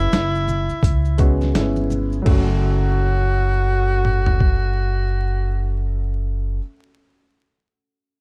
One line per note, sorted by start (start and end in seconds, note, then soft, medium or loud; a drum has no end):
0.00 0.20 G#3 medium
0.00 0.20 B3 medium
0.00 0.21 C#4 medium
0.00 0.24 E4 medium
0.00 1.42 E4 loud
0.12 0.67 F#1 medium
0.12 snare loud
0.12 closed hi-hat medium
0.12 maracas medium
0.35 maracas soft
0.48 high conga soft
0.48 low conga medium
0.48 maracas soft
0.48 shaker soft
0.69 muted upright bass stroke soft
0.69 maracas soft
0.83 1.51 C#2 medium
0.83 kick medium
0.83 closed hi-hat medium
0.83 maracas medium
1.05 maracas soft
1.18 1.48 G#3 medium
1.18 1.48 B3 medium
1.18 1.49 C#4 medium
1.18 1.49 F#4 medium
1.18 kick medium
1.18 closed hi-hat soft
1.18 shaker soft
1.18 maracas soft
1.41 snare soft
1.41 high conga medium
1.41 maracas soft
1.54 2.23 G1 medium
1.54 2.14 G#3 medium
1.54 1.62 A3 medium
1.54 2.14 C#4 medium
1.54 2.15 E4 medium
1.54 snare loud
1.54 closed hi-hat medium
1.54 maracas medium
1.61 2.17 B3 medium
1.76 high conga medium
1.76 maracas soft
1.90 low conga medium
1.90 maracas soft
1.90 shaker soft
2.12 maracas soft
2.22 6.56 F#3 medium
2.22 6.57 A3 medium
2.26 6.58 F#1 medium
2.26 6.59 C#4 medium
2.26 5.89 F#4 loud
2.26 kick loud
2.26 crash medium
2.26 high conga medium
2.31 6.60 F#4 medium
4.05 mid tom medium
4.26 floor tom medium
4.41 kick medium